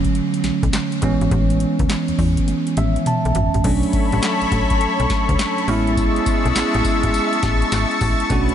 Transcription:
Already playing: tine electric piano D3 F#3 A3 C#4
0.05 kick, closed hi-hat
0.15 closed hi-hat
0.34 closed hi-hat
0.44 fm bass B1, snare, closed hi-hat
0.63 fm bass B1, kick, closed hi-hat
0.73 snare, clap, closed hi-hat
0.92 closed hi-hat
1.02 fm bass A1, tine electric piano E3 G#3 B3 C#4, kick, closed hi-hat
1.21 fm bass G#1, closed hi-hat
1.31 fm bass A1, kick, closed hi-hat
1.50 closed hi-hat
1.60 closed hi-hat
1.79 fm bass C#2, kick, closed hi-hat
1.90 snare, clap, closed hi-hat
2.08 fm bass E2, closed hi-hat
2.18 fm bass E2, kick, open hi-hat
2.37 kick, closed hi-hat
2.48 closed hi-hat, high tom
2.67 closed hi-hat
2.77 fm bass A1, tine electric piano E5, closed hi-hat, mid tom
2.96 closed hi-hat, mid tom
3.06 tine electric piano A5, closed hi-hat, mid tom
3.25 fm bass B1, closed hi-hat
3.35 fm bass G#1, closed hi-hat, floor tom
3.54 fm bass A1, closed hi-hat, floor tom
3.64 fm bass B1, tine electric piano F#3 A3 C#4 D4, analog synth pad A4 C#5 B5 C#6, kick, closed hi-hat, crash
3.83 closed hi-hat
3.93 kick, closed hi-hat
4.12 fm bass A1, closed hi-hat
4.23 snare, clap, closed hi-hat
4.41 fm bass A1, closed hi-hat
4.51 fm bass A1, kick, closed hi-hat
4.70 kick, closed hi-hat
4.81 closed hi-hat
5.00 fm bass B1, closed hi-hat
5.10 kick, snare, closed hi-hat
5.29 fm bass D2, kick, closed hi-hat
5.39 snare, clap, closed hi-hat
5.58 closed hi-hat
5.68 fm bass A1, tine electric piano G#3 B3 C#4 E4, analog synth pad G#3 E5 A5, open hi-hat
5.87 closed hi-hat
5.97 kick, closed hi-hat, tambourine
6.16 closed hi-hat
6.26 kick, closed hi-hat, tambourine
6.45 fm bass B1, closed hi-hat
6.55 snare, clap, closed hi-hat, tambourine
6.74 fm bass A1, closed hi-hat
6.85 kick, closed hi-hat, tambourine
7.03 fm bass G#1, kick, closed hi-hat
7.14 closed hi-hat, tambourine
7.33 closed hi-hat
7.43 fm bass A1, kick, snare, closed hi-hat
7.62 closed hi-hat
7.72 fm bass G#1, snare, clap, closed hi-hat, tambourine
7.91 closed hi-hat
8.01 fm bass A1, kick, open hi-hat, tambourine
8.20 closed hi-hat
8.30 fm bass B1, tine electric piano A3 C#4 D4 F#4, analog synth pad B4 C#5, kick, closed hi-hat, tambourine
8.49 closed hi-hat

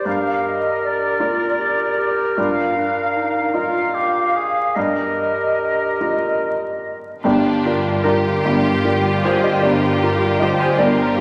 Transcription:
Already playing: clarinet G4
0.05 felt piano G2, oboe A#4, flute section F5
0.45 flute section D#5
0.82 flute section D5
1.20 felt piano F4 A#4 D5, clarinet F4
1.60 clarinet G4
1.98 clarinet G4
2.37 felt piano G2, clarinet F4, flute section F5
2.77 clarinet D4
3.16 clarinet D#4
3.54 felt piano F4 A#4 D#5, clarinet F4, oboe A#4, flute section F5
3.94 oboe G4
4.36 oboe G#4
4.75 felt piano G2, clarinet G4, oboe A#4, flute section D#5
6.01 felt piano F4 A#4 D#5
7.24 felt piano G1 G2 G4, double bass section G1, cello section G2, violin section D4 F4 G4
7.65 felt piano F4 A#4 D5
8.04 felt piano F4 A#4 D5, violin section G4
8.44 felt piano G1 G2, viola section G4
8.84 felt piano F4 A#4 D5
9.23 felt piano F4 A#4 C5 D5, violin section G#4
9.44 violin section C5, felt piano D#5
9.61 felt piano G1 G2 D5, violin section A#4
10.03 felt piano F4 A#4 D5
10.40 felt piano F4 A#4 D5 D#5, violin section C5
10.60 violin section G#4, felt piano C5
10.78 felt piano G1 G2 D5, violin section A#4, viola section A#4

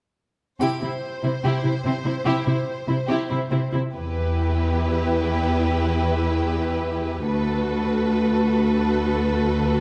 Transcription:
0.60 cello section C3, viola section E4, violin section G4 C5, triangle
0.82 cello section C3, violin section E4, viola section E4
1.23 cello section C3, viola section E4, violin section E4
1.44 cello section C3, viola section E4, violin section G4
1.64 cello section C3, violin section E4, viola section E4
1.85 cello section C3, violin section C4, viola section E4
2.05 cello section C3, violin section E4, viola section E4
2.25 cello section C3, viola section E4, violin section G4
2.45 cello section C3, violin section E4, viola section E4
2.87 cello section C3, violin section E4, viola section E4
3.08 cello section C3, viola section E4, violin section G4
3.30 cello section C3, violin section E4, viola section E4
3.51 cello section C3, violin section C4, viola section E4
3.73 cello section C3, viola section E4, violin section E4
3.94 cello section E2, viola section E4, violin section G4 B4
7.26 cello section D2, viola section F#4, violin section A4 B4

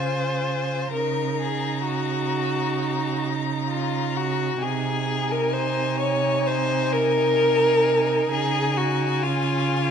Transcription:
Already playing: cello C#3, viola F4, violin C5 G#5
0.93 cello C#3, viola D#4, violin A#4 A#5
1.41 violin G#4
1.86 violin F#4
3.69 violin F4
4.17 violin F#4
4.62 cello C3, viola D#4, violin G#4 G#5
5.31 violin A#4
5.54 violin C5
6.00 violin C#5
6.46 violin C5
6.92 violin A#4
8.31 cello C#3, violin G#4 G#5
8.77 violin F#4
9.23 viola C#4, violin F4

